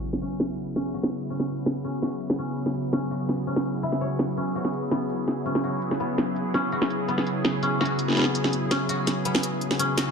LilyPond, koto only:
\new Staff \with { instrumentName = "Koto" } { \time 4/4 \key cis \minor \tempo 4 = 166 fis'8 cis'8 r4 cis'8 fis'4 cis'8 | r4 cis'8 fis'4 cis'8 r4 | cis'8 fis'4 cis'8 r8 e'8 cis''8 r8 | cis'8 fis'4 b4. cis'8 fis'8~ |
fis'8 b4. cis'8 fis'4 b8~ | b4 cis'8 fis'4 b4. | cis'8 fis'4 b4. cis'8 fis'8 | }